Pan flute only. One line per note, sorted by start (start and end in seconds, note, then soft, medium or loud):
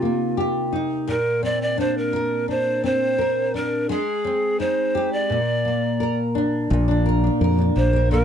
0.00 0.73 F4 medium
1.09 1.46 A#4 medium
1.44 1.61 D5 medium
1.62 1.78 D5 medium
1.80 1.96 C5 medium
1.98 2.46 A#4 medium
2.50 2.82 C5 medium
2.85 3.57 C5 medium
3.55 3.92 A#4 medium
3.90 4.61 G#4 medium
4.60 5.15 C5 medium
5.13 6.18 D5 medium
7.77 8.09 C5 medium
8.12 8.24 A#4 medium